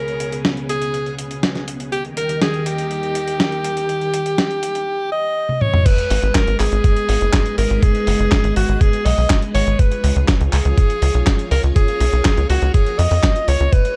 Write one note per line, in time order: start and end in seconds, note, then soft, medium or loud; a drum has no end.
0.00 1.88 C#3 medium
0.00 1.88 B3 medium
0.00 1.88 C#4 medium
0.00 1.88 G#4 medium
0.00 0.42 A#4 medium
0.08 closed hi-hat soft
0.20 closed hi-hat medium
0.32 closed hi-hat medium
0.45 snare loud
0.45 closed hi-hat soft
0.57 closed hi-hat soft
0.69 1.15 G#4 loud
0.69 closed hi-hat medium
0.82 closed hi-hat soft
0.94 closed hi-hat soft
1.06 closed hi-hat soft
1.19 closed hi-hat medium
1.31 closed hi-hat medium
1.43 snare loud
1.43 closed hi-hat soft
1.55 snare soft
1.55 closed hi-hat soft
1.68 closed hi-hat medium
1.80 closed hi-hat soft
1.92 4.84 D#3 medium
1.92 4.84 D#4 medium
1.92 4.84 G4 medium
1.92 2.03 G4 loud
1.92 4.84 A#4 medium
1.92 closed hi-hat medium
2.05 closed hi-hat soft
2.17 2.40 A#4 loud
2.17 closed hi-hat medium
2.29 closed hi-hat medium
2.42 2.68 G#4 loud
2.42 snare loud
2.42 closed hi-hat medium
2.54 closed hi-hat soft
2.66 5.11 G4 loud
2.66 closed hi-hat medium
2.78 closed hi-hat medium
2.91 closed hi-hat medium
3.03 closed hi-hat soft
3.15 closed hi-hat medium
3.28 closed hi-hat medium
3.40 snare loud
3.40 closed hi-hat medium
3.52 closed hi-hat soft
3.64 closed hi-hat medium
3.77 closed hi-hat medium
3.89 closed hi-hat medium
4.01 closed hi-hat soft
4.14 closed hi-hat loud
4.26 closed hi-hat medium
4.38 snare loud
4.38 closed hi-hat medium
4.51 closed hi-hat soft
4.63 closed hi-hat medium
4.75 closed hi-hat medium
5.12 5.63 D#5 loud
5.49 high tom soft
5.61 5.87 C#5 loud
5.61 mid tom medium
5.74 mid tom medium
5.86 9.75 G#3 medium
5.86 11.72 G#4 medium
5.86 6.36 B4 loud
5.86 9.75 B4 medium
5.86 9.75 D#5 loud
5.86 kick loud
5.86 closed hi-hat medium
5.86 crash loud
5.98 closed hi-hat soft
6.10 6.19 G#1 medium
6.10 open hi-hat loud
6.23 6.31 G#1 medium
6.23 closed hi-hat soft
6.35 6.59 A#4 loud
6.35 kick loud
6.35 snare loud
6.35 clap medium
6.35 closed hi-hat medium
6.47 6.56 G#1 medium
6.47 closed hi-hat soft
6.60 6.68 G#1 medium
6.60 7.54 G#4 loud
6.60 clap medium
6.60 open hi-hat loud
6.72 6.81 G#1 medium
6.72 closed hi-hat soft
6.84 kick loud
6.84 closed hi-hat medium
6.96 closed hi-hat soft
7.09 7.18 G#1 medium
7.09 open hi-hat loud
7.21 7.30 F#1 medium
7.21 closed hi-hat soft
7.33 kick loud
7.33 snare loud
7.33 clap loud
7.33 closed hi-hat medium
7.46 closed hi-hat soft
7.58 7.67 G#1 medium
7.58 7.84 A#4 loud
7.58 open hi-hat loud
7.70 7.79 G#1 medium
7.70 closed hi-hat soft
7.83 8.56 G#4 loud
7.83 kick loud
7.83 closed hi-hat medium
7.95 closed hi-hat soft
8.07 8.16 F#1 loud
8.07 open hi-hat loud
8.19 8.28 F#1 medium
8.19 closed hi-hat soft
8.32 kick loud
8.32 snare loud
8.32 clap loud
8.32 closed hi-hat medium
8.44 8.53 G#1 medium
8.44 closed hi-hat soft
8.56 8.65 G#1 medium
8.56 8.82 F#4 medium
8.56 open hi-hat loud
8.69 8.77 G#1 medium
8.69 closed hi-hat soft
8.81 9.07 G#4 loud
8.81 kick loud
8.81 closed hi-hat medium
8.93 closed hi-hat soft
9.06 9.14 B1 loud
9.06 9.40 D#5 loud
9.06 open hi-hat loud
9.18 9.26 B1 medium
9.18 open hi-hat medium
9.30 kick loud
9.30 snare loud
9.30 clap loud
9.30 closed hi-hat medium
9.42 closed hi-hat soft
9.55 9.63 G#1 loud
9.55 9.81 C#5 loud
9.55 open hi-hat loud
9.67 9.76 G#1 medium
9.67 closed hi-hat soft
9.79 13.69 F4 medium
9.79 10.26 B4 medium
9.79 13.69 C#5 loud
9.79 kick loud
9.79 closed hi-hat medium
9.92 closed hi-hat soft
10.04 10.13 C#2 loud
10.04 open hi-hat loud
10.16 10.25 C#2 medium
10.16 closed hi-hat soft
10.28 kick loud
10.28 snare loud
10.28 clap medium
10.28 closed hi-hat medium
10.41 10.49 C#2 medium
10.41 closed hi-hat soft
10.53 10.62 C#2 medium
10.53 11.47 G#4 loud
10.53 clap medium
10.53 open hi-hat loud
10.65 10.74 C#2 medium
10.65 closed hi-hat soft
10.78 kick loud
10.78 closed hi-hat medium
10.90 closed hi-hat soft
11.02 11.11 C#2 medium
11.02 open hi-hat loud
11.14 11.23 B1 medium
11.14 closed hi-hat soft
11.27 kick loud
11.27 snare loud
11.27 clap loud
11.27 closed hi-hat medium
11.39 closed hi-hat soft
11.51 11.60 C#2 loud
11.51 11.62 A#4 loud
11.51 open hi-hat loud
11.64 11.72 C#2 medium
11.64 closed hi-hat soft
11.76 12.46 G#4 loud
11.76 13.71 A#4 medium
11.76 kick loud
11.76 closed hi-hat medium
11.88 closed hi-hat soft
12.00 12.09 B1 medium
12.00 open hi-hat loud
12.13 12.22 B1 medium
12.13 closed hi-hat soft
12.25 kick loud
12.25 snare loud
12.25 clap medium
12.25 closed hi-hat medium
12.37 12.46 C#2 medium
12.37 closed hi-hat soft
12.49 12.58 C#2 medium
12.49 12.72 F#4 medium
12.49 open hi-hat loud
12.62 12.71 C#2 medium
12.62 closed hi-hat soft
12.74 13.00 G#4 loud
12.74 kick loud
12.74 closed hi-hat medium
12.86 closed hi-hat soft
12.99 13.08 F2 loud
12.99 13.49 D#5 loud
12.99 open hi-hat loud
13.11 13.20 F2 medium
13.11 open hi-hat medium
13.23 kick loud
13.23 snare loud
13.23 clap medium
13.23 closed hi-hat medium
13.36 closed hi-hat soft
13.48 13.57 C#2 loud
13.48 13.74 C#5 loud
13.48 open hi-hat loud
13.60 13.69 C#2 medium
13.60 closed hi-hat soft
13.73 13.96 G#3 medium
13.73 13.96 G#4 medium
13.73 13.96 B4 loud
13.73 13.96 B4 medium
13.73 13.96 D#5 medium
13.73 kick loud
13.73 closed hi-hat medium
13.85 closed hi-hat soft